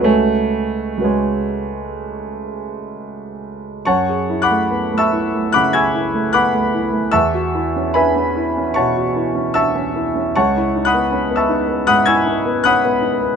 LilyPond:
\new Staff \with { instrumentName = "Grand piano" } { \time 4/4 \key fis \minor \tempo 4 = 75 << { a4 gis2 r4 | \tuplet 3/2 { <cis'' fis'' a'' cis'''>4 <fis'' b'' d''' fis'''>8~ <fis'' b'' d''' fis'''>8 <e'' a'' cis''' e'''>4 } <fis'' b'' d''' fis'''>16 <gis'' cis''' e''' gis'''>8. <fis'' b'' d''' fis'''>4 | <e'' a'' cis''' e'''>4 <b' e'' gis'' b''>4 <cis'' fis'' a'' cis'''>4 <e'' a'' cis''' e'''>4 | \tuplet 3/2 { <cis'' fis'' a'' cis'''>4 <fis'' b'' dis''' fis'''>8~ <fis'' b'' dis''' fis'''>8 <e'' a'' cis''' e'''>4 } <fis'' b'' dis''' fis'''>16 <gis'' cis''' e''' gis'''>8. <fis'' b'' dis''' fis'''>4 | } \\ { <cis, fis' b' cis'' gis''>4 <cis, fis' b' cis'' gis''>2. | fis,16 gis'16 e'16 a16 b16 a16 e'16 a16 cis16 gis'16 e'16 a16 b16 a16 e'16 a16 | e,16 fis'16 e'16 cis'16 d'16 cis'16 e'16 cis'16 b,16 fis'16 e'16 cis'16 d'16 cis'16 e'16 cis'16 | cis,16 e'16 dis'16 b16 cis'16 b16 dis'16 b16 gis,16 e'16 dis'16 b16 cis'16 b16 dis'16 b16 | } >> }